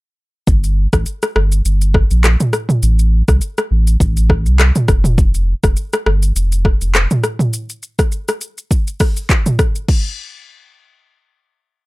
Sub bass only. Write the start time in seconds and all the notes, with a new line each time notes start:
0.47 G1
0.93 A1
1.36 G1
1.65 G1
2.11 A#1
2.83 A1
3.28 C2
3.71 A1
4.00 A1
4.46 C2
4.88 F1
5.64 F1
6.06 G1
6.36 F1
6.81 F1